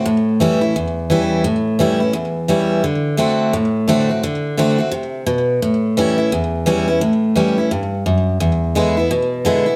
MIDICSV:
0, 0, Header, 1, 2, 480
1, 0, Start_track
1, 0, Tempo, 347826
1, 83, Time_signature, 4, 2, 24, 8
1, 13467, End_track
2, 0, Start_track
2, 0, Title_t, "Steel-string acoustic guitar"
2, 0, Program_c, 0, 25
2, 76, Note_on_c, 0, 45, 97
2, 553, Note_on_c, 0, 52, 91
2, 566, Note_on_c, 0, 55, 99
2, 570, Note_on_c, 0, 61, 100
2, 581, Note_on_c, 0, 64, 104
2, 827, Note_off_c, 0, 64, 0
2, 837, Note_off_c, 0, 52, 0
2, 843, Note_off_c, 0, 55, 0
2, 843, Note_on_c, 0, 64, 68
2, 845, Note_off_c, 0, 61, 0
2, 871, Note_on_c, 0, 61, 51
2, 1002, Note_off_c, 0, 45, 0
2, 1031, Note_off_c, 0, 64, 0
2, 1044, Note_off_c, 0, 61, 0
2, 1047, Note_on_c, 0, 40, 94
2, 1515, Note_on_c, 0, 52, 97
2, 1533, Note_on_c, 0, 55, 91
2, 1536, Note_on_c, 0, 61, 99
2, 1544, Note_on_c, 0, 64, 97
2, 1968, Note_off_c, 0, 40, 0
2, 1981, Note_off_c, 0, 52, 0
2, 1990, Note_off_c, 0, 55, 0
2, 1990, Note_on_c, 0, 45, 95
2, 1991, Note_off_c, 0, 61, 0
2, 1995, Note_off_c, 0, 64, 0
2, 2468, Note_on_c, 0, 52, 95
2, 2484, Note_on_c, 0, 55, 89
2, 2484, Note_on_c, 0, 61, 101
2, 2495, Note_on_c, 0, 64, 109
2, 2744, Note_off_c, 0, 64, 0
2, 2755, Note_off_c, 0, 52, 0
2, 2761, Note_on_c, 0, 64, 59
2, 2763, Note_off_c, 0, 55, 0
2, 2763, Note_off_c, 0, 61, 0
2, 2792, Note_on_c, 0, 61, 50
2, 2920, Note_off_c, 0, 45, 0
2, 2944, Note_on_c, 0, 40, 100
2, 2950, Note_off_c, 0, 64, 0
2, 2965, Note_off_c, 0, 61, 0
2, 3427, Note_on_c, 0, 52, 92
2, 3435, Note_on_c, 0, 55, 94
2, 3446, Note_on_c, 0, 61, 94
2, 3450, Note_on_c, 0, 64, 105
2, 3877, Note_off_c, 0, 40, 0
2, 3897, Note_off_c, 0, 52, 0
2, 3901, Note_off_c, 0, 55, 0
2, 3907, Note_off_c, 0, 61, 0
2, 3909, Note_off_c, 0, 64, 0
2, 3916, Note_on_c, 0, 50, 91
2, 4363, Note_off_c, 0, 50, 0
2, 4379, Note_on_c, 0, 50, 95
2, 4390, Note_on_c, 0, 57, 102
2, 4397, Note_on_c, 0, 60, 92
2, 4407, Note_on_c, 0, 66, 103
2, 4854, Note_off_c, 0, 50, 0
2, 4859, Note_off_c, 0, 57, 0
2, 4862, Note_off_c, 0, 60, 0
2, 4867, Note_off_c, 0, 66, 0
2, 4877, Note_on_c, 0, 45, 90
2, 5349, Note_on_c, 0, 50, 100
2, 5364, Note_on_c, 0, 57, 100
2, 5370, Note_on_c, 0, 60, 105
2, 5373, Note_on_c, 0, 66, 105
2, 5630, Note_off_c, 0, 66, 0
2, 5636, Note_off_c, 0, 50, 0
2, 5644, Note_off_c, 0, 57, 0
2, 5646, Note_on_c, 0, 66, 61
2, 5647, Note_off_c, 0, 60, 0
2, 5669, Note_on_c, 0, 60, 56
2, 5804, Note_off_c, 0, 45, 0
2, 5833, Note_off_c, 0, 66, 0
2, 5844, Note_on_c, 0, 50, 97
2, 5845, Note_off_c, 0, 60, 0
2, 6296, Note_off_c, 0, 50, 0
2, 6313, Note_on_c, 0, 50, 87
2, 6319, Note_on_c, 0, 57, 96
2, 6330, Note_on_c, 0, 60, 108
2, 6337, Note_on_c, 0, 66, 115
2, 6584, Note_off_c, 0, 66, 0
2, 6598, Note_off_c, 0, 50, 0
2, 6600, Note_on_c, 0, 66, 61
2, 6601, Note_off_c, 0, 57, 0
2, 6607, Note_off_c, 0, 60, 0
2, 6624, Note_on_c, 0, 60, 57
2, 6783, Note_on_c, 0, 48, 92
2, 6791, Note_off_c, 0, 66, 0
2, 6802, Note_off_c, 0, 60, 0
2, 7256, Note_off_c, 0, 48, 0
2, 7265, Note_on_c, 0, 47, 94
2, 7737, Note_off_c, 0, 47, 0
2, 7760, Note_on_c, 0, 45, 95
2, 8240, Note_on_c, 0, 52, 99
2, 8248, Note_on_c, 0, 55, 93
2, 8259, Note_on_c, 0, 61, 110
2, 8262, Note_on_c, 0, 64, 108
2, 8508, Note_off_c, 0, 64, 0
2, 8522, Note_off_c, 0, 52, 0
2, 8525, Note_on_c, 0, 64, 60
2, 8526, Note_off_c, 0, 55, 0
2, 8532, Note_off_c, 0, 61, 0
2, 8547, Note_on_c, 0, 61, 50
2, 8686, Note_off_c, 0, 45, 0
2, 8713, Note_off_c, 0, 64, 0
2, 8724, Note_off_c, 0, 61, 0
2, 8725, Note_on_c, 0, 40, 96
2, 9191, Note_on_c, 0, 52, 101
2, 9202, Note_on_c, 0, 55, 90
2, 9209, Note_on_c, 0, 61, 104
2, 9211, Note_on_c, 0, 64, 105
2, 9472, Note_off_c, 0, 64, 0
2, 9478, Note_off_c, 0, 52, 0
2, 9483, Note_off_c, 0, 55, 0
2, 9487, Note_off_c, 0, 61, 0
2, 9489, Note_on_c, 0, 64, 67
2, 9511, Note_on_c, 0, 61, 54
2, 9648, Note_off_c, 0, 40, 0
2, 9675, Note_off_c, 0, 64, 0
2, 9678, Note_on_c, 0, 45, 93
2, 9686, Note_off_c, 0, 61, 0
2, 10150, Note_on_c, 0, 52, 96
2, 10163, Note_on_c, 0, 55, 88
2, 10169, Note_on_c, 0, 61, 103
2, 10170, Note_on_c, 0, 64, 93
2, 10437, Note_off_c, 0, 52, 0
2, 10441, Note_off_c, 0, 64, 0
2, 10444, Note_off_c, 0, 55, 0
2, 10447, Note_off_c, 0, 61, 0
2, 10457, Note_on_c, 0, 64, 59
2, 10478, Note_on_c, 0, 61, 50
2, 10605, Note_off_c, 0, 45, 0
2, 10639, Note_off_c, 0, 64, 0
2, 10642, Note_on_c, 0, 43, 96
2, 10649, Note_off_c, 0, 61, 0
2, 11106, Note_off_c, 0, 43, 0
2, 11122, Note_on_c, 0, 42, 94
2, 11585, Note_off_c, 0, 42, 0
2, 11597, Note_on_c, 0, 40, 89
2, 12078, Note_on_c, 0, 50, 89
2, 12088, Note_on_c, 0, 56, 99
2, 12097, Note_on_c, 0, 59, 96
2, 12105, Note_on_c, 0, 64, 102
2, 12361, Note_off_c, 0, 50, 0
2, 12362, Note_off_c, 0, 64, 0
2, 12366, Note_off_c, 0, 56, 0
2, 12371, Note_off_c, 0, 59, 0
2, 12379, Note_on_c, 0, 64, 65
2, 12409, Note_on_c, 0, 59, 50
2, 12524, Note_off_c, 0, 40, 0
2, 12560, Note_off_c, 0, 64, 0
2, 12568, Note_on_c, 0, 47, 95
2, 12575, Note_off_c, 0, 59, 0
2, 13038, Note_on_c, 0, 50, 101
2, 13051, Note_on_c, 0, 56, 94
2, 13055, Note_on_c, 0, 59, 106
2, 13068, Note_on_c, 0, 64, 100
2, 13313, Note_off_c, 0, 64, 0
2, 13320, Note_off_c, 0, 50, 0
2, 13327, Note_off_c, 0, 56, 0
2, 13329, Note_off_c, 0, 59, 0
2, 13330, Note_on_c, 0, 64, 68
2, 13357, Note_on_c, 0, 59, 57
2, 13467, Note_off_c, 0, 47, 0
2, 13467, Note_off_c, 0, 59, 0
2, 13467, Note_off_c, 0, 64, 0
2, 13467, End_track
0, 0, End_of_file